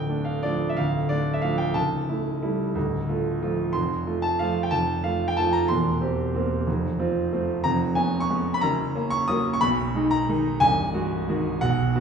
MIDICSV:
0, 0, Header, 1, 2, 480
1, 0, Start_track
1, 0, Tempo, 344432
1, 1077, Time_signature, 3, 2, 24, 8
1, 1077, Tempo, 330215
1, 4917, Tempo, 325556
1, 13077, Tempo, 332963
1, 17477, End_track
2, 0, Start_track
2, 0, Title_t, "Grand piano"
2, 0, Program_c, 0, 0
2, 0, Control_c, 0, 64, 127
2, 0, Note_on_c, 0, 26, 45
2, 0, Note_on_c, 0, 38, 49
2, 0, Note_on_c, 0, 79, 75
2, 123, Note_on_c, 0, 57, 38
2, 133, Note_on_c, 0, 62, 38
2, 345, Note_on_c, 0, 77, 57
2, 352, Note_off_c, 0, 79, 0
2, 557, Note_off_c, 0, 57, 0
2, 563, Note_off_c, 0, 62, 0
2, 595, Note_on_c, 0, 74, 69
2, 596, Note_off_c, 0, 77, 0
2, 611, Note_on_c, 0, 53, 36
2, 617, Note_on_c, 0, 57, 38
2, 625, Note_on_c, 0, 62, 40
2, 958, Note_off_c, 0, 74, 0
2, 968, Note_on_c, 0, 76, 65
2, 1034, Note_off_c, 0, 53, 0
2, 1037, Note_off_c, 0, 57, 0
2, 1042, Note_off_c, 0, 62, 0
2, 1068, Note_on_c, 0, 77, 75
2, 1079, Note_off_c, 0, 76, 0
2, 1090, Note_off_c, 0, 38, 0
2, 1090, Note_on_c, 0, 38, 52
2, 1091, Note_off_c, 0, 26, 0
2, 1091, Note_on_c, 0, 26, 45
2, 1104, Control_c, 0, 64, 0
2, 1347, Control_c, 0, 64, 127
2, 1538, Note_on_c, 0, 74, 73
2, 1543, Note_off_c, 0, 38, 0
2, 1544, Note_off_c, 0, 26, 0
2, 1546, Note_off_c, 0, 77, 0
2, 1560, Note_on_c, 0, 57, 38
2, 1561, Note_on_c, 0, 62, 42
2, 1894, Note_on_c, 0, 76, 62
2, 1906, Note_off_c, 0, 74, 0
2, 1992, Note_off_c, 0, 57, 0
2, 1992, Note_off_c, 0, 62, 0
2, 2011, Note_on_c, 0, 77, 71
2, 2025, Note_off_c, 0, 76, 0
2, 2029, Note_on_c, 0, 53, 38
2, 2034, Note_on_c, 0, 57, 38
2, 2038, Note_on_c, 0, 62, 40
2, 2249, Note_on_c, 0, 79, 68
2, 2266, Note_off_c, 0, 77, 0
2, 2464, Note_off_c, 0, 53, 0
2, 2467, Note_off_c, 0, 57, 0
2, 2469, Note_off_c, 0, 62, 0
2, 2485, Note_on_c, 0, 81, 73
2, 2495, Note_on_c, 0, 25, 43
2, 2495, Note_on_c, 0, 37, 49
2, 2501, Note_off_c, 0, 79, 0
2, 2539, Control_c, 0, 64, 0
2, 2800, Control_c, 0, 64, 127
2, 2968, Note_off_c, 0, 25, 0
2, 2968, Note_off_c, 0, 37, 0
2, 2987, Note_on_c, 0, 57, 37
2, 2992, Note_on_c, 0, 64, 41
2, 3425, Note_off_c, 0, 57, 0
2, 3428, Note_off_c, 0, 64, 0
2, 3471, Note_on_c, 0, 57, 37
2, 3473, Note_on_c, 0, 55, 38
2, 3479, Note_on_c, 0, 64, 44
2, 3904, Note_off_c, 0, 55, 0
2, 3904, Note_off_c, 0, 57, 0
2, 3908, Note_off_c, 0, 64, 0
2, 3952, Note_on_c, 0, 26, 47
2, 3956, Note_on_c, 0, 38, 53
2, 3983, Control_c, 0, 64, 0
2, 4228, Control_c, 0, 64, 127
2, 4409, Note_off_c, 0, 26, 0
2, 4411, Note_off_c, 0, 38, 0
2, 4429, Note_on_c, 0, 57, 41
2, 4440, Note_on_c, 0, 65, 43
2, 4869, Note_off_c, 0, 57, 0
2, 4875, Note_off_c, 0, 65, 0
2, 4920, Note_on_c, 0, 53, 39
2, 4931, Note_on_c, 0, 57, 39
2, 4933, Note_on_c, 0, 65, 44
2, 5346, Note_off_c, 0, 53, 0
2, 5352, Note_off_c, 0, 57, 0
2, 5354, Note_off_c, 0, 65, 0
2, 5377, Note_off_c, 0, 81, 0
2, 5378, Note_on_c, 0, 84, 79
2, 5392, Note_on_c, 0, 41, 54
2, 5394, Note_on_c, 0, 29, 48
2, 5415, Control_c, 0, 64, 0
2, 5640, Control_c, 0, 64, 127
2, 5852, Note_off_c, 0, 41, 0
2, 5853, Note_off_c, 0, 29, 0
2, 5880, Note_on_c, 0, 57, 43
2, 5886, Note_on_c, 0, 65, 46
2, 6105, Note_off_c, 0, 84, 0
2, 6108, Note_on_c, 0, 81, 77
2, 6317, Note_off_c, 0, 57, 0
2, 6320, Note_off_c, 0, 65, 0
2, 6357, Note_off_c, 0, 81, 0
2, 6359, Note_on_c, 0, 77, 79
2, 6374, Note_on_c, 0, 53, 42
2, 6382, Note_on_c, 0, 57, 43
2, 6389, Note_on_c, 0, 65, 42
2, 6711, Note_on_c, 0, 79, 67
2, 6720, Note_off_c, 0, 77, 0
2, 6797, Note_off_c, 0, 53, 0
2, 6802, Note_off_c, 0, 57, 0
2, 6806, Note_off_c, 0, 65, 0
2, 6823, Note_on_c, 0, 81, 87
2, 6832, Note_off_c, 0, 79, 0
2, 6838, Note_on_c, 0, 41, 53
2, 6841, Note_on_c, 0, 29, 47
2, 6861, Control_c, 0, 64, 0
2, 7081, Control_c, 0, 64, 127
2, 7301, Note_off_c, 0, 41, 0
2, 7302, Note_off_c, 0, 29, 0
2, 7308, Note_off_c, 0, 81, 0
2, 7310, Note_on_c, 0, 77, 76
2, 7328, Note_on_c, 0, 57, 43
2, 7330, Note_on_c, 0, 65, 46
2, 7664, Note_on_c, 0, 79, 75
2, 7682, Note_off_c, 0, 77, 0
2, 7766, Note_off_c, 0, 57, 0
2, 7767, Note_off_c, 0, 65, 0
2, 7797, Note_on_c, 0, 81, 83
2, 7798, Note_off_c, 0, 79, 0
2, 7814, Note_on_c, 0, 53, 43
2, 7820, Note_on_c, 0, 57, 43
2, 7822, Note_on_c, 0, 65, 48
2, 8031, Note_on_c, 0, 82, 85
2, 8046, Note_off_c, 0, 81, 0
2, 8240, Note_off_c, 0, 53, 0
2, 8243, Note_off_c, 0, 57, 0
2, 8244, Note_off_c, 0, 65, 0
2, 8263, Note_on_c, 0, 84, 87
2, 8273, Note_off_c, 0, 82, 0
2, 8284, Note_on_c, 0, 40, 54
2, 8285, Note_on_c, 0, 28, 52
2, 8308, Control_c, 0, 64, 0
2, 8560, Control_c, 0, 64, 127
2, 8732, Note_off_c, 0, 40, 0
2, 8733, Note_off_c, 0, 28, 0
2, 8743, Note_on_c, 0, 60, 46
2, 8751, Note_on_c, 0, 67, 49
2, 9182, Note_off_c, 0, 60, 0
2, 9187, Note_off_c, 0, 67, 0
2, 9235, Note_on_c, 0, 58, 44
2, 9242, Note_on_c, 0, 60, 46
2, 9248, Note_on_c, 0, 67, 46
2, 9670, Note_off_c, 0, 58, 0
2, 9673, Note_off_c, 0, 60, 0
2, 9677, Note_off_c, 0, 67, 0
2, 9716, Note_on_c, 0, 41, 56
2, 9717, Note_on_c, 0, 29, 51
2, 9746, Control_c, 0, 64, 0
2, 9974, Control_c, 0, 64, 127
2, 10178, Note_off_c, 0, 29, 0
2, 10178, Note_off_c, 0, 41, 0
2, 10193, Note_on_c, 0, 60, 49
2, 10198, Note_on_c, 0, 65, 51
2, 10632, Note_off_c, 0, 60, 0
2, 10635, Note_off_c, 0, 65, 0
2, 10683, Note_on_c, 0, 57, 45
2, 10690, Note_on_c, 0, 60, 44
2, 10693, Note_on_c, 0, 65, 50
2, 11111, Note_off_c, 0, 57, 0
2, 11116, Note_off_c, 0, 60, 0
2, 11117, Note_off_c, 0, 65, 0
2, 11142, Note_on_c, 0, 82, 100
2, 11148, Note_off_c, 0, 84, 0
2, 11161, Note_on_c, 0, 29, 57
2, 11162, Note_on_c, 0, 41, 62
2, 11188, Control_c, 0, 64, 0
2, 11381, Control_c, 0, 64, 127
2, 11609, Note_on_c, 0, 80, 77
2, 11615, Note_off_c, 0, 29, 0
2, 11616, Note_off_c, 0, 41, 0
2, 11620, Note_off_c, 0, 82, 0
2, 11629, Note_on_c, 0, 59, 46
2, 11635, Note_on_c, 0, 61, 58
2, 11979, Note_on_c, 0, 85, 90
2, 11983, Note_off_c, 0, 80, 0
2, 12067, Note_off_c, 0, 59, 0
2, 12071, Note_off_c, 0, 61, 0
2, 12114, Note_on_c, 0, 56, 49
2, 12127, Note_on_c, 0, 59, 50
2, 12130, Note_on_c, 0, 61, 56
2, 12473, Note_off_c, 0, 85, 0
2, 12475, Note_on_c, 0, 83, 90
2, 12548, Note_off_c, 0, 56, 0
2, 12555, Note_off_c, 0, 59, 0
2, 12556, Note_off_c, 0, 61, 0
2, 12581, Note_on_c, 0, 82, 102
2, 12595, Note_off_c, 0, 83, 0
2, 12603, Note_on_c, 0, 30, 62
2, 12604, Note_on_c, 0, 42, 62
2, 12623, Control_c, 0, 64, 0
2, 12883, Control_c, 0, 64, 127
2, 13067, Note_off_c, 0, 30, 0
2, 13067, Note_off_c, 0, 42, 0
2, 13085, Note_on_c, 0, 58, 54
2, 13088, Note_on_c, 0, 61, 60
2, 13301, Note_on_c, 0, 85, 99
2, 13313, Note_off_c, 0, 82, 0
2, 13521, Note_off_c, 0, 58, 0
2, 13523, Note_off_c, 0, 61, 0
2, 13549, Note_on_c, 0, 87, 103
2, 13556, Note_off_c, 0, 85, 0
2, 13569, Note_on_c, 0, 54, 54
2, 13574, Note_on_c, 0, 58, 50
2, 13578, Note_on_c, 0, 61, 59
2, 13913, Note_off_c, 0, 87, 0
2, 13921, Note_on_c, 0, 85, 88
2, 13990, Note_off_c, 0, 54, 0
2, 13993, Note_off_c, 0, 58, 0
2, 13995, Note_off_c, 0, 61, 0
2, 14026, Note_on_c, 0, 83, 107
2, 14035, Note_off_c, 0, 85, 0
2, 14046, Note_on_c, 0, 35, 69
2, 14046, Note_on_c, 0, 47, 64
2, 14057, Control_c, 0, 64, 0
2, 14285, Control_c, 0, 64, 127
2, 14496, Note_off_c, 0, 35, 0
2, 14496, Note_off_c, 0, 47, 0
2, 14522, Note_on_c, 0, 56, 54
2, 14531, Note_on_c, 0, 63, 58
2, 14744, Note_off_c, 0, 83, 0
2, 14746, Note_on_c, 0, 82, 100
2, 14956, Note_off_c, 0, 56, 0
2, 14961, Note_off_c, 0, 63, 0
2, 15003, Note_on_c, 0, 51, 52
2, 15015, Note_on_c, 0, 56, 51
2, 15018, Note_on_c, 0, 63, 54
2, 15427, Note_off_c, 0, 51, 0
2, 15434, Note_off_c, 0, 56, 0
2, 15436, Note_off_c, 0, 63, 0
2, 15460, Note_on_c, 0, 80, 110
2, 15470, Note_off_c, 0, 82, 0
2, 15472, Note_on_c, 0, 36, 71
2, 15475, Note_on_c, 0, 24, 65
2, 15498, Control_c, 0, 64, 0
2, 15713, Control_c, 0, 64, 127
2, 15926, Note_off_c, 0, 36, 0
2, 15928, Note_off_c, 0, 24, 0
2, 15946, Note_on_c, 0, 56, 55
2, 15951, Note_on_c, 0, 66, 64
2, 16390, Note_off_c, 0, 56, 0
2, 16392, Note_off_c, 0, 66, 0
2, 16444, Note_on_c, 0, 51, 50
2, 16447, Note_on_c, 0, 56, 54
2, 16455, Note_on_c, 0, 66, 59
2, 16876, Note_off_c, 0, 51, 0
2, 16878, Note_off_c, 0, 56, 0
2, 16882, Note_off_c, 0, 66, 0
2, 16914, Note_off_c, 0, 80, 0
2, 16914, Note_on_c, 0, 78, 103
2, 16926, Note_on_c, 0, 47, 64
2, 16929, Note_on_c, 0, 35, 69
2, 16945, Control_c, 0, 64, 0
2, 17156, Control_c, 0, 64, 127
2, 17386, Note_off_c, 0, 47, 0
2, 17387, Note_off_c, 0, 35, 0
2, 17406, Note_on_c, 0, 59, 57
2, 17413, Note_on_c, 0, 66, 58
2, 17477, Note_off_c, 0, 59, 0
2, 17477, Note_off_c, 0, 66, 0
2, 17477, Note_off_c, 0, 78, 0
2, 17477, End_track
0, 0, End_of_file